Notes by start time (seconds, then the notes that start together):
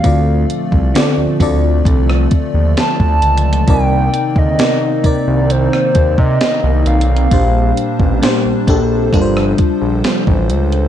Already playing: A#2 F5
0.03 D2 D3 F3 A3 C4 F4 A4 D5, kick, closed hi-hat
0.50 closed hi-hat
0.72 C2, kick
0.94 D3 C4 F4 A4 D5, snare, closed hi-hat
1.18 D2
1.40 D2 D3 C4 F4 A4 D5, kick, closed hi-hat
1.85 C2, kick, closed hi-hat
2.10 cross-stick
2.31 kick, closed hi-hat
2.54 D#2
2.77 A5, snare, closed hi-hat
3.00 D2, kick
3.22 C#2, closed hi-hat
3.38 closed hi-hat
3.53 closed hi-hat
3.67 C2 C3 D#3 A#3 C4 D#4 A#4 D5 G5, kick, closed hi-hat
4.14 closed hi-hat
4.36 D2 D#5, kick
4.58 C3 C4 D#4 A#4 D5, snare, closed hi-hat
5.04 C2 C3 C4 D#4 A#4 D5, kick, closed hi-hat
5.27 C2
5.50 C5, closed hi-hat
5.73 cross-stick
5.95 D#2, kick, closed hi-hat
6.18 C3 D#5, kick
6.41 snare, closed hi-hat
6.64 C2
6.86 B1 F5, closed hi-hat
7.01 closed hi-hat
7.17 closed hi-hat
7.31 A#1 A#2 G3 A#3 D4 G4 C5, kick, closed hi-hat
7.77 closed hi-hat
8.00 A1, kick
8.22 A#2 A#3 D4 G4 C5, snare, closed hi-hat
8.45 A#1
8.67 A#1 A#2 A#3 D4 G4 A4, kick, closed hi-hat
9.13 G1 C3 F3 G3 D4 F4 A4 A#4, kick, closed hi-hat
9.22 C5
9.37 cross-stick
9.58 kick, closed hi-hat
9.81 A#1
10.04 snare, closed hi-hat
10.27 A1, kick
10.49 C#2, closed hi-hat
10.72 closed hi-hat